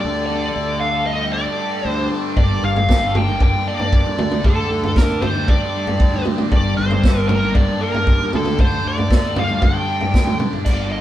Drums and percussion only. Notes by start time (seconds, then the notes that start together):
2.37 kick, floor tom
2.63 high conga
2.76 floor tom
2.89 kick, snare
3.15 floor tom, mid tom, low conga
3.28 high conga
3.40 kick, floor tom
3.79 floor tom, high conga
3.93 kick
4.05 high conga
4.18 mid tom, low conga
4.31 mid tom
4.44 kick, floor tom
4.70 high conga
4.83 floor tom
4.96 kick, snare
5.22 floor tom, mid tom, low conga
5.35 high conga
5.48 kick, floor tom
5.87 floor tom, high conga
6.00 kick
6.13 high conga
6.25 mid tom, low conga
6.38 mid tom
6.51 kick, floor tom
6.78 high conga
6.90 floor tom
7.04 kick, snare
7.29 floor tom, mid tom, low conga
7.43 high conga
7.55 kick, floor tom
7.94 floor tom, high conga
8.07 kick
8.20 high conga
8.33 mid tom, low conga
8.45 mid tom
8.59 kick, floor tom
8.72 low conga
8.98 floor tom
9.10 kick, snare
9.36 floor tom, mid tom, low conga
9.49 high conga
9.62 kick, floor tom, mid tom
10.01 floor tom, high conga
10.14 kick, snare
10.27 mid tom, high conga
10.39 mid tom, low conga
10.53 floor tom
10.66 kick, floor tom, crash